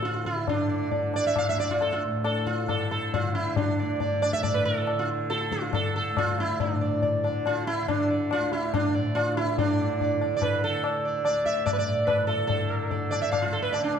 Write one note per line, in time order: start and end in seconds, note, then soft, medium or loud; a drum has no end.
0.00 1.48 D2 medium
0.00 2.05 A2 medium
0.00 0.31 D3 medium
0.00 tabla te medium
0.05 0.26 F4 medium
0.14 tabla te medium
0.25 0.49 E4 medium
0.25 tabla ke medium
0.31 0.89 D3 medium
0.36 tabla te medium
0.48 1.17 D4 medium
0.48 tabla tin loud
0.48 tabla ge medium
0.69 0.90 D5 soft
0.89 2.65 D3 medium
0.89 1.12 D5 soft
0.89 tabla tin medium
0.89 tabla ge medium
1.14 1.26 D5 loud
1.14 tabla na medium
1.27 1.37 E5 medium
1.36 1.49 F5 loud
1.36 tabla na medium
1.36 tabla ge medium
1.48 3.79 D2 medium
1.48 1.59 E5 medium
1.58 1.70 D5 medium
1.58 tabla te medium
1.70 1.81 F4 medium
1.70 tabla ge medium
1.81 1.92 A4 medium
1.81 tabla na medium
1.93 2.02 F4 medium
2.05 4.37 A2 medium
2.24 2.47 A4 medium
2.24 tabla na medium
2.47 2.69 F4 medium
2.47 tabla ke medium
2.65 3.22 D3 medium
2.65 tabla na medium
2.65 tabla ge medium
2.69 2.90 A4 medium
2.91 3.11 A4 medium
2.91 tabla te medium
3.14 3.34 F4 medium
3.14 tabla tin medium
3.14 tabla ge medium
3.22 4.94 D3 medium
3.35 3.57 E4 medium
3.56 4.24 D4 medium
3.56 tabla tin loud
3.56 tabla ge loud
3.79 6.10 D2 medium
3.79 3.99 D5 soft
4.00 4.20 D5 soft
4.00 tabla tin medium
4.00 tabla ge medium
4.22 4.33 D5 medium
4.22 tabla na medium
4.33 4.43 E5 loud
4.33 tabla ke medium
4.37 6.67 A2 medium
4.43 4.54 D5 medium
4.43 tabla na medium
4.43 tabla ge medium
4.54 4.65 B4 medium
4.65 4.99 A4 medium
4.87 tabla na medium
4.94 5.53 D3 medium
4.99 5.08 F4 medium
5.30 5.52 A4 loud
5.30 tabla te medium
5.41 tabla te medium
5.52 7.23 D3 medium
5.52 5.74 F4 medium
5.52 tabla ke medium
5.62 tabla te medium
5.73 5.95 A4 medium
5.73 tabla na medium
5.73 tabla ge medium
5.96 6.18 A4 medium
6.11 8.36 D2 medium
6.17 6.40 F4 loud
6.17 tabla na medium
6.17 tabla ge medium
6.38 6.60 E4 medium
6.38 tabla te medium
6.60 7.20 D4 medium
6.60 tabla tin loud
6.60 tabla ge loud
6.68 8.93 A2 medium
6.81 7.01 D5 soft
7.02 7.22 D5 soft
7.02 tabla tin medium
7.02 tabla ge medium
7.23 7.82 D3 medium
7.23 7.44 D5 soft
7.23 tabla na medium
7.46 7.67 F4 loud
7.46 tabla na medium
7.67 7.88 E4 loud
7.67 tabla te medium
7.82 9.49 D3 medium
7.88 8.08 D4 medium
7.88 tabla na medium
7.88 tabla ge medium
8.10 8.30 D5 soft
8.31 8.52 F4 loud
8.31 tabla na medium
8.37 11.25 D2 medium
8.52 8.74 E4 medium
8.52 tabla te medium
8.74 8.93 D4 medium
8.74 tabla na loud
8.74 tabla ge medium
8.93 9.59 A2 medium
8.93 9.14 D5 soft
9.15 9.37 F4 loud
9.15 tabla na medium
9.37 9.58 E4 medium
9.37 tabla te medium
9.49 10.14 D3 medium
9.58 11.80 A2 medium
9.58 10.17 D4 medium
9.58 9.77 D5 soft
9.58 tabla tin loud
9.58 tabla ge medium
9.79 9.99 D5 soft
10.01 10.20 D5 soft
10.01 tabla tin medium
10.01 tabla ge medium
10.14 10.70 D3 medium
10.21 10.35 D5 soft
10.21 tabla na medium
10.37 10.42 D5 medium
10.42 10.63 B4 medium
10.42 tabla na medium
10.42 tabla ge medium
10.64 11.02 A4 medium
10.70 12.35 D3 medium
10.84 11.04 D5 soft
10.84 tabla na medium
11.05 11.24 D5 soft
11.25 13.43 D2 medium
11.25 11.45 D5 medium
11.25 tabla na medium
11.46 11.65 E5 medium
11.46 tabla ke medium
11.66 11.73 D5 medium
11.66 tabla na medium
11.66 tabla ge medium
11.73 11.78 B4 medium
11.79 13.97 A2 medium
11.79 12.09 D5 medium
12.07 12.27 B4 medium
12.07 tabla na medium
12.07 tabla ge medium
12.27 12.46 A4 medium
12.27 tabla te medium
12.35 12.89 D3 medium
12.47 13.13 A4 medium
12.47 tabla tin loud
12.47 tabla ge medium
12.70 12.89 D5 soft
12.89 13.99 D3 medium
12.89 13.10 D5 soft
12.89 tabla tin medium
12.89 tabla ge medium
13.11 13.21 D5 medium
13.11 tabla na medium
13.22 13.31 E5 medium
13.32 13.43 F5 medium
13.32 tabla na medium
13.32 tabla ge medium
13.42 13.99 D2 medium
13.42 13.53 F4 medium
13.53 13.62 A4 medium
13.63 13.73 B4 medium
13.73 13.81 D5 medium
13.73 tabla na medium
13.80 13.93 D4 medium
13.80 13.83 E4 soft
13.95 tabla na medium